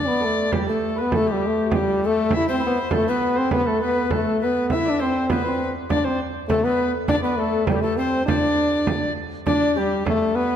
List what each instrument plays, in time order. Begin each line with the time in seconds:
Already playing: recorder D5, harp D5
0.08 french horn B3, harp B4
0.21 harp A4
0.25 french horn A3
0.52 french horn G3, harp G4, recorder G4, frame drum
0.67 french horn A3, harp A4, recorder A4
0.83 frame drum
0.96 harp B4, recorder B4
1.01 french horn B3
1.10 harp A4, recorder A4, frame drum
1.16 french horn A3
1.26 harp G4, recorder G4
1.32 french horn G3
1.47 french horn A3
1.69 harp G4, recorder G4, frame drum
1.76 french horn G3
2.02 recorder A4, frame drum
2.06 french horn A3
2.31 harp E5, recorder E5, frame drum
2.36 french horn E4
2.48 french horn C4, recorder C5
2.60 harp B4
2.67 french horn B3
2.88 harp A4 B4, frame drum
2.92 french horn A3, recorder A4
3.07 french horn B3, harp B4, recorder B4
3.21 frame drum
3.36 french horn C4, harp C5, recorder C5
3.51 french horn B3, harp B4, recorder B4, frame drum
3.66 french horn A3, recorder A4, harp A4
3.80 french horn B3, harp B4, recorder B4
4.10 harp A4, recorder A4, frame drum
4.15 french horn A3
4.40 recorder B4, frame drum
4.44 french horn B3
4.70 recorder E5, harp E5, frame drum
4.74 french horn E4
4.85 harp D5
4.90 french horn D4
5.00 french horn C4, recorder C5, harp C5
5.29 french horn B3, recorder B4, harp B4, frame drum
5.45 french horn C4, harp C5
5.89 french horn D4, harp D5, recorder D5, frame drum
6.04 french horn C4, harp C5, recorder C5
6.48 french horn A3, recorder A4, harp A4, frame drum
6.63 french horn B3, recorder B4, harp B4
6.80 frame drum
7.08 french horn D4, recorder D5, harp D5, frame drum
7.23 french horn B3, harp B4, recorder B4
7.38 french horn A3, harp A4, recorder A4
7.67 french horn G3, harp G4, recorder G4, frame drum
7.72 recorder G4 A4
7.82 french horn A3, recorder A4, harp A4
7.97 french horn C4, recorder C5, harp C5, frame drum
8.26 french horn D4, harp D5, recorder D5, frame drum
8.87 frame drum
9.46 french horn D4, harp D5, recorder D5, frame drum
9.76 french horn G3, recorder G4, harp G4, frame drum
10.06 french horn A3, recorder A4, harp A4, frame drum
10.35 french horn B3, recorder B4